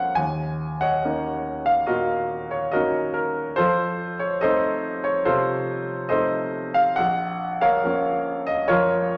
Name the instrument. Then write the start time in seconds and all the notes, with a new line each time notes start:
grand piano
Already playing: F2 A#3 C#4 F4 A#4 C#5 D#5 F5 F#5
0.15 D#2 G#5
0.81 C#5 D#5 F#5
1.05 A#3 C#4 D#4
1.66 F5
1.86 A#2 F#4 A#4 D#5
2.51 C#5
2.72 A#3 C#4 D#4 F#4 A#4 D#5
3.14 A#4
3.56 F2 F4 A4 C5
4.19 C#5
4.41 A3 C4 D#4 A4 C5 D#5
5.04 C#5
5.25 C3 F4 A4 C5
6.09 A3 C4 D#4 A4 C5 D#5
6.74 F5
6.96 A#1 F#5
7.61 A#4 C#5 F5
7.84 F3 A#3 C#4
8.47 D#5
8.68 F2 F4 A#4 C#5